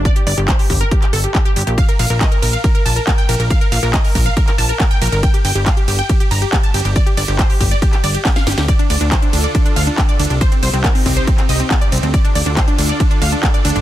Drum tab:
RD |--------------------------------|x---x---x---x---x---x---x---x---|x---x---x---x---x---x---x---x---|x---x---x---x---x---x---x---x---|
HH |x-x-o-x-x-o-o-x-x-x-o-x-x-x-oxx-|x-x-o-x-x-x-o-x-x-x-o-x-x-x-oxx-|x-x-o-x-x-o-o-x-x-x-o-x-x-x-oxx-|x-x-o-x-x-x-o-x-x-x-o-x-x-x-oxx-|
CP |--------x---------x-----x-------|--------x---------------x-------|--------x---------x-----x-------|--------x---------------x-------|
SD |--------------------------------|--------------------------------|--------------------------------|--------------------------------|
BD |o-------o---o---o-------o-------|o-------o-------o-------o-------|o-------o---o---o-------o-------|o-------o-------o-------o-------|

RD |x---x---x---x---x---x---x---x---|x---x---x---x---x---x---x---x---|x---x---x---x---x---x---x---x---|x---x---x---x---x---x---x---x---|
HH |x-x-o-x-x-o-o-x-x-x-o-x-x-x-oxx-|x-x-o-x-x-x-o-x-x-x-o-x-x-x-oxx-|x-x-o-x-x-o-o-x-x-x-o-x-x-x-oxx-|x-x-o-x-x-x-o-x-x-x-o-x-x-x-oxx-|
CP |--------x---------x-----x-------|--------x---------------x-------|--------x---------x-----x-------|--------x---------------x-------|
SD |------------------------o-o-o-o-|--------------------------------|--------------------------------|--------------------------------|
BD |o-------o---o---o-------o-------|o-------o-------o-------o-------|o-------o---o---o-------o-------|o-------o-------o-------o-------|